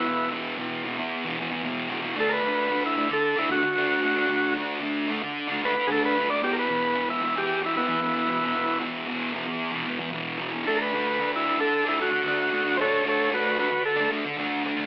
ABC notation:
X:1
M:4/4
L:1/16
Q:1/4=113
K:Dlyd
V:1 name="Transistor combo organ"
[B,E]2 z12 z2 | A [^AB]4 E2 =A2 E F6- | F2 z8 B2 [GA] B2 d | =G [^AB]4 E2 G2 E [B,E]6- |
[B,E]2 z12 z2 | A [^AB]4 E2 =A2 E F6 | [A=c^c]2 [Ac]2 [FB]2 [FB]2 A2 z6 |]
V:2 name="Distorted electric guitar" clef=bass
[E,,B,,E,]2 [E,,B,,E,]2 [E,,B,,E,]2 [E,,B,,E,]3 [B,,E,] [E,,B,,E,]2 [E,,B,,E,]2 [E,,B,,E,] [B,,E,] | [D,A,D]2 [D,A,D]2 [D,A,D]2 [D,A,D]3 [A,D] [D,A,D]2 [D,A,D]2 [D,A,D] [A,D] | [D,A,D]2 [D,A,D]2 [D,A,D]2 [D,A,D]3 [A,D] [D,A,D]2 [D,A,D]2 [D,A,D] [A,D] | [E,,B,,E,]2 [E,,B,,E,]2 [E,,B,,E,]2 [E,,B,,E,]3 [B,,E,] [E,,B,,E,]2 [E,,B,,E,]2 [E,,B,,E,] [B,,E,] |
[E,,B,,E,]2 [E,,B,,E,]2 [E,,B,,E,]2 [E,,B,,E,]3 [B,,E,] [E,,B,,E,]2 [E,,B,,E,]2 [E,,B,,E,] [B,,E,] | [D,A,D]2 [D,A,D]2 [D,A,D]2 [D,A,D]3 [A,D] [D,A,D]2 [D,A,D]2 [D,A,D] [A,D] | [D,A,D]2 [D,A,D]2 [D,A,D]2 [D,A,D]3 [A,D] [D,A,D]2 [D,A,D]2 [D,A,D] [A,D] |]